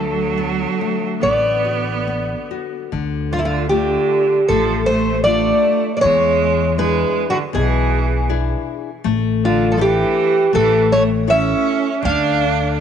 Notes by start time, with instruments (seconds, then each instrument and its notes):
Already playing: upright bass D2, nylon-string guitar D3 A3, cello F#3, twelve-string acoustic guitar A4
0.37 nylon-string guitar B3
0.81 nylon-string guitar A3
1.21 upright bass A1, nylon-string guitar B3, cello B3, twelve-string acoustic guitar D5
1.65 nylon-string guitar F#4
2.07 nylon-string guitar B3
2.51 nylon-string guitar F#4
2.92 upright bass D2, nylon-string guitar D3
3.31 cello D3, twelve-string acoustic guitar F4
3.38 cello C3, twelve-string acoustic guitar E4
3.45 cello D3, twelve-string acoustic guitar F4
3.69 cello D3, nylon-string guitar A3 D4 F4, twelve-string acoustic guitar G4
4.48 upright bass A1, cello F3, nylon-string guitar A3, twelve-string acoustic guitar A4
4.86 cello A3, twelve-string acoustic guitar C5
5.24 cello A3, nylon-string guitar A3 D4 F4, twelve-string acoustic guitar D5
5.97 cello A#3, twelve-string acoustic guitar D5
6.01 upright bass E2, nylon-string guitar E3, cello G#3, twelve-string acoustic guitar C#5
6.78 cello G#3, nylon-string guitar D4 E4 G#4, twelve-string acoustic guitar B4
7.30 cello D3, twelve-string acoustic guitar F#4
7.53 upright bass B1, nylon-string guitar B2, cello E3, twelve-string acoustic guitar G#4
8.29 nylon-string guitar D4 E4 G#4
9.04 upright bass A1, nylon-string guitar A3
9.45 cello D3, twelve-string acoustic guitar F4
9.72 cello F3, twelve-string acoustic guitar A4
9.77 cello E3, nylon-string guitar D4 E4 A4, twelve-string acoustic guitar G4
10.53 upright bass A1, cello E3, nylon-string guitar A3, twelve-string acoustic guitar A4
10.91 cello A3, twelve-string acoustic guitar C#5
11.27 cello C#4, nylon-string guitar E4 A4 C#5, twelve-string acoustic guitar E5
12.03 upright bass D2, nylon-string guitar D3, cello D4, twelve-string acoustic guitar F5